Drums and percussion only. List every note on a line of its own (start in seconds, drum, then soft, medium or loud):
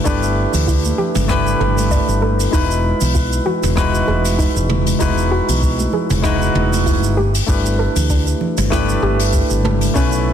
0.05 kick loud
0.05 open hi-hat medium
0.05 shaker medium
0.23 shaker soft
0.53 open hi-hat medium
0.53 low conga medium
0.53 shaker medium
0.68 kick loud
0.68 open hi-hat medium
0.68 shaker medium
0.85 high conga medium
0.85 shaker medium
0.98 low conga medium
1.15 mid tom medium
1.15 open hi-hat medium
1.15 shaker medium
1.29 kick loud
1.29 cross-stick medium
1.29 open hi-hat medium
1.29 shaker medium
1.47 shaker medium
1.61 mid tom medium
1.61 high conga medium
1.78 open hi-hat medium
1.78 high conga medium
1.78 shaker medium
1.91 kick loud
1.91 open hi-hat medium
1.91 shaker medium
2.09 shaker soft
2.22 high conga medium
2.40 open hi-hat medium
2.40 shaker medium
2.53 kick loud
2.53 open hi-hat medium
2.53 shaker medium
2.71 shaker soft
3.01 open hi-hat medium
3.01 low conga medium
3.01 shaker medium
3.15 kick loud
3.15 open hi-hat medium
3.15 shaker medium
3.33 shaker soft
3.46 low conga medium
3.63 mid tom medium
3.63 open hi-hat medium
3.63 shaker medium
3.77 kick loud
3.77 cross-stick medium
3.77 open hi-hat medium
3.77 shaker medium
3.95 shaker medium
4.08 high conga medium
4.25 open hi-hat medium
4.25 shaker medium
4.39 kick loud
4.39 open hi-hat medium
4.39 shaker medium
4.57 shaker soft
4.69 mid tom medium
4.69 high conga medium
4.87 open hi-hat medium
4.87 shaker medium
5.00 kick medium
5.00 open hi-hat medium
5.00 shaker medium
5.18 shaker soft
5.48 open hi-hat medium
5.48 low conga medium
5.48 shaker medium
5.63 kick loud
5.63 open hi-hat medium
5.63 shaker medium
5.79 high conga medium
5.79 shaker medium
5.93 low conga medium
6.10 mid tom medium
6.10 open hi-hat medium
6.10 shaker medium
6.24 kick medium
6.24 cross-stick medium
6.24 open hi-hat medium
6.24 shaker medium
6.42 shaker medium
6.55 mid tom medium
6.55 high conga medium
6.72 open hi-hat medium
6.72 high conga medium
6.72 shaker medium
6.86 kick loud
6.86 open hi-hat medium
6.86 shaker medium
7.04 shaker medium
7.18 high conga medium
7.34 open hi-hat medium
7.34 shaker medium
7.48 kick loud
7.48 open hi-hat medium
7.48 shaker medium
7.66 shaker soft
7.96 open hi-hat medium
7.96 low conga medium
7.96 shaker medium
8.10 kick medium
8.10 open hi-hat medium
8.10 shaker medium
8.27 shaker medium
8.41 low conga loud
8.57 mid tom medium
8.57 open hi-hat medium
8.57 shaker medium
8.72 kick medium
8.72 cross-stick medium
8.72 open hi-hat medium
8.72 shaker medium
8.89 shaker soft
9.03 high conga medium
9.19 open hi-hat medium
9.19 shaker medium
9.33 kick loud
9.33 open hi-hat medium
9.33 shaker medium
9.50 shaker soft
9.64 mid tom medium
9.64 high conga medium
9.81 open hi-hat medium
9.81 shaker medium
9.95 kick loud
9.95 open hi-hat medium
9.95 shaker medium
10.12 shaker medium